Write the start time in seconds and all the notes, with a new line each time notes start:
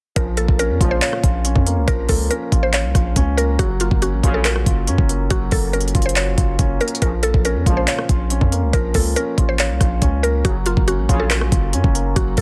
0.16 A#1 F2 C#3 F3 A#4, kick, closed hi-hat
0.37 A#3 A4, closed hi-hat
0.48 A#1, kick
0.59 C#4 A#4, closed hi-hat
0.70 F2
0.81 A#1 C#2 A#2 F3 F4, kick, closed hi-hat
0.91 C5
1.02 C#5 F5, clap, closed hi-hat
1.13 cross-stick
1.24 A#1 F4, kick, closed hi-hat
1.45 C#4, closed hi-hat
1.56 F2, kick
1.66 A#3, closed hi-hat
1.77 C#2
1.88 A#1 F3 A#4, kick, closed hi-hat
2.09 C#2 A#3 A4, kick, open hi-hat
2.31 C#4 A#4, closed hi-hat
2.52 A1 F4, kick, closed hi-hat
2.63 C5
2.73 C#5 F5, clap, closed hi-hat
2.84 C2
2.95 A#1 F4, kick, cross-stick, closed hi-hat
3.16 C#2 C#4, kick, closed hi-hat
3.37 A#3 A#4, closed hi-hat
3.59 F#1 A#1 F#2 C#3 F#3 F#4, kick, closed hi-hat
3.80 A#3 F4, closed hi-hat
3.91 F#1, kick
4.02 C#4 F#4, closed hi-hat
4.13 A1
4.23 A#1 F#2 C#3 F4, kick, closed hi-hat
4.34 A4
4.45 F#4 A#4, clap, closed hi-hat
4.56 cross-stick
4.66 F#1 F4, kick, closed hi-hat
4.87 F#2 C#4, closed hi-hat
4.98 F#1, kick
5.09 A#3, closed hi-hat
5.30 F#1 F#3 F#4, kick, closed hi-hat
5.51 F#1 A#3 A4, kick, open hi-hat
5.73 C#4 A#4, closed hi-hat
5.80 closed hi-hat
5.88 closed hi-hat
5.95 F#1 F4, kick, closed hi-hat
6.02 C5, closed hi-hat
6.09 closed hi-hat
6.16 F#4 C#5, clap, closed hi-hat
6.38 F#1 F4, kick, closed hi-hat
6.59 F#1 C#4, kick, closed hi-hat
6.81 A#3 A#4, closed hi-hat
6.88 closed hi-hat
6.95 closed hi-hat
7.02 A#1 F2 C#3 F3 A#4, kick, closed hi-hat
7.23 A#3 A4, closed hi-hat
7.34 A#1, kick
7.45 C#4 A#4, closed hi-hat
7.55 F2
7.66 A#1 C#2 A#2 F3 F4, kick, closed hi-hat
7.77 C5
7.88 C#5 F5, clap, closed hi-hat
7.99 cross-stick
8.09 A#1 F4, kick, closed hi-hat
8.30 C#4, closed hi-hat
8.41 F2, kick
8.52 A#3, closed hi-hat
8.63 C#2
8.73 A#1 F3 A#4, kick, closed hi-hat
8.94 C#2 A#3 A4, kick, open hi-hat
9.16 C#4 A#4, closed hi-hat
9.38 A1 F4, kick, closed hi-hat
9.49 C5
9.59 C#5 F5, clap, closed hi-hat
9.70 C2
9.81 A#1 F4, kick, cross-stick, closed hi-hat
10.02 C#2 C#4, kick, closed hi-hat
10.23 A#3 A#4, closed hi-hat
10.45 F#1 A#1 F#2 C#3 F#3 F#4, kick, closed hi-hat
10.66 A#3 F4, closed hi-hat
10.77 F#1, kick
10.88 C#4 F#4, closed hi-hat
10.98 A1
11.09 A#1 F#2 C#3 F4, kick, closed hi-hat
11.20 A4
11.30 F#4 A#4, clap, closed hi-hat
11.41 cross-stick
11.52 F#1 F4, kick, closed hi-hat
11.73 F#2 C#4, closed hi-hat
11.84 F#1, kick
11.95 A#3, closed hi-hat
12.16 F#1 F#3 F#4, kick, closed hi-hat
12.37 F#1 A#3 A4, kick, open hi-hat